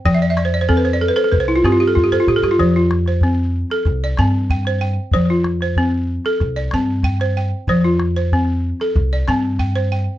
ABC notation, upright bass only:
X:1
M:4/4
L:1/16
Q:1/4=94
K:Flyd
V:1 name="Upright bass" clef=bass
F,,8 C,,2 G,,4 A,, G,, | F,,8 C,,2 G,,6 | F,,8 C,,2 G,,6 | F,,8 C,,2 G,,6 |]